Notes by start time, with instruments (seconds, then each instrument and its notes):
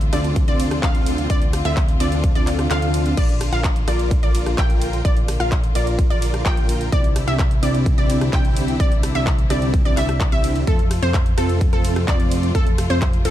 Already playing: analog synth bass D2, string section D3 C4 F4
0.01 closed hi-hat
0.13 analog synth bass D2, supersaw synth C4 D4 F4 A4 D5, synth pluck D5, cross-stick, open hi-hat, ride
0.24 closed hi-hat
0.36 kick, closed hi-hat, ride
0.48 analog synth bass D2, supersaw synth C4 D4 F4 A4 D5, synth pluck D5, closed hi-hat
0.60 open hi-hat, ride
0.71 cross-stick, closed hi-hat
0.83 analog synth bass D2, supersaw synth C4 D4 F4 F5, synth pluck F5, kick, clap, closed hi-hat, ride
0.95 closed hi-hat
1.06 open hi-hat, ride
1.18 closed hi-hat
1.30 analog synth bass D2, supersaw synth C4 D4, synth pluck D5, kick, closed hi-hat, ride
1.42 closed hi-hat
1.53 cross-stick, open hi-hat, ride
1.65 analog synth bass D2, supersaw synth C4 D4 F4 A4 E5, synth pluck E5, closed hi-hat
1.77 kick, clap, closed hi-hat, ride
1.89 closed hi-hat
2.00 analog synth bass D2, supersaw synth C4 D4 F4 A4 D5, synth pluck D5, open hi-hat, ride
2.12 closed hi-hat
2.24 kick, closed hi-hat, ride
2.35 analog synth bass D2, supersaw synth C4 D4 F4 A4 D5, synth pluck D5, closed hi-hat
2.47 clap, open hi-hat, ride
2.59 cross-stick, closed hi-hat
2.71 analog synth bass D2, supersaw synth C4 D4 F4 A4 F5, synth pluck F5, clap, closed hi-hat, ride
2.82 closed hi-hat
2.94 open hi-hat, ride
3.06 closed hi-hat
3.17 analog synth bass A#1, string section A#3, supersaw synth F4 A#4 D5, synth pluck D5, kick, closed hi-hat, crash, ride
3.29 closed hi-hat
3.41 cross-stick, open hi-hat, ride
3.52 analog synth bass A#1, supersaw synth F4 A#4 F5, synth pluck F5, closed hi-hat
3.64 kick, clap, closed hi-hat, ride
3.76 closed hi-hat
3.88 analog synth bass A#1, supersaw synth F4 A#4 D5, synth pluck D5, cross-stick, open hi-hat, ride
3.99 closed hi-hat
4.11 kick, closed hi-hat, ride
4.23 analog synth bass A#1, supersaw synth F4 A#4 D5, synth pluck D5, closed hi-hat
4.35 open hi-hat, ride
4.46 cross-stick, closed hi-hat
4.58 analog synth bass A#1, supersaw synth F4 A#4 G5, synth pluck G5, kick, clap, closed hi-hat, ride
4.70 closed hi-hat
4.82 open hi-hat, ride
4.93 closed hi-hat
5.05 analog synth bass A#1, supersaw synth F4 A#4 D5, synth pluck D5, kick, closed hi-hat, ride
5.17 closed hi-hat
5.28 cross-stick, open hi-hat, ride
5.40 analog synth bass A#1, supersaw synth F4 A#4 F5, synth pluck F5, closed hi-hat
5.52 kick, clap, closed hi-hat, ride
5.64 closed hi-hat
5.75 analog synth bass A#1, supersaw synth F4 A#4 D5, synth pluck D5, open hi-hat, ride
5.87 closed hi-hat
5.99 kick, closed hi-hat, ride
6.10 analog synth bass A#1, supersaw synth F4 A#4 D5, synth pluck D5, closed hi-hat
6.22 open hi-hat, ride
6.34 cross-stick, closed hi-hat
6.45 analog synth bass A#1, supersaw synth F4 A#4 G5, synth pluck G5, kick, clap, closed hi-hat, ride
6.57 closed hi-hat
6.69 open hi-hat, ride
6.81 closed hi-hat
6.92 analog synth bass C2, string section D3 C4 E4, supersaw synth C4 D4 E4 G4 D5, synth pluck D5, kick, closed hi-hat, ride
7.04 closed hi-hat
7.16 cross-stick, open hi-hat, ride
7.27 analog synth bass C2, supersaw synth C4 D4 E4 G4 E5, synth pluck E5, closed hi-hat
7.39 kick, clap, closed hi-hat, ride
7.51 closed hi-hat
7.63 analog synth bass C2, supersaw synth C4 D4 E4 G4 D5, synth pluck D5, open hi-hat, ride
7.75 closed hi-hat
7.86 kick, closed hi-hat, ride
7.98 analog synth bass C2, supersaw synth C4 D4 E4 G4 D5, synth pluck D5, closed hi-hat
8.10 open hi-hat, ride
8.21 cross-stick, closed hi-hat
8.33 analog synth bass C2, supersaw synth C4 E4 G4, synth pluck G5, kick, clap, closed hi-hat, ride
8.45 closed hi-hat
8.57 open hi-hat, ride
8.68 closed hi-hat
8.80 analog synth bass C2, supersaw synth D4 D5, synth pluck D5, kick, closed hi-hat, ride
8.92 closed hi-hat
9.03 cross-stick, open hi-hat, ride
9.15 analog synth bass C2, supersaw synth C4 D4 E4 G4 E5, synth pluck E5, closed hi-hat
9.27 kick, clap, closed hi-hat, ride
9.39 closed hi-hat
9.50 analog synth bass C2, supersaw synth C4 D4 E4 G4 D5, synth pluck D5, cross-stick, open hi-hat, ride
9.62 closed hi-hat
9.74 kick, closed hi-hat, ride
9.85 analog synth bass C2, supersaw synth C4 D4 E4 G4 D5, synth pluck D5, closed hi-hat
9.97 analog synth bass C2, supersaw synth C4 D4 E4 G4 E5, synth pluck E5, clap, open hi-hat, ride
10.09 cross-stick, closed hi-hat
10.20 kick, clap, closed hi-hat, ride
10.32 analog synth bass C2, supersaw synth C4 D4 E4 G4 E5, synth pluck E5, closed hi-hat
10.44 open hi-hat, ride
10.56 closed hi-hat
10.67 analog synth bass F2, string section C3 A3 F4, supersaw synth C4 A4, synth pluck A4, kick, closed hi-hat, ride
10.79 closed hi-hat
10.91 cross-stick, open hi-hat, ride
11.02 analog synth bass F2, supersaw synth C4 F4 C5, synth pluck C5, closed hi-hat
11.14 kick, clap, closed hi-hat, ride
11.26 closed hi-hat
11.38 analog synth bass F2, supersaw synth C4 F4 A4, synth pluck A4, cross-stick, open hi-hat, ride
11.49 closed hi-hat
11.61 kick, closed hi-hat, ride
11.73 analog synth bass F2, supersaw synth C4 F4 A4, synth pluck A4, closed hi-hat
11.85 open hi-hat, ride
11.96 cross-stick, closed hi-hat
12.08 analog synth bass F2, supersaw synth C4 F4 D5, synth pluck D5, kick, clap, closed hi-hat, ride
12.20 closed hi-hat
12.32 open hi-hat, ride
12.43 closed hi-hat
12.55 analog synth bass F2, supersaw synth C4, synth pluck A4, kick, closed hi-hat, ride
12.67 closed hi-hat
12.78 cross-stick, open hi-hat, ride
12.90 analog synth bass F2, supersaw synth C4 F4 C5, synth pluck C5, closed hi-hat
13.02 kick, clap, closed hi-hat, ride
13.13 closed hi-hat
13.25 analog synth bass F2, supersaw synth C4 F4 A4, synth pluck A4, open hi-hat, ride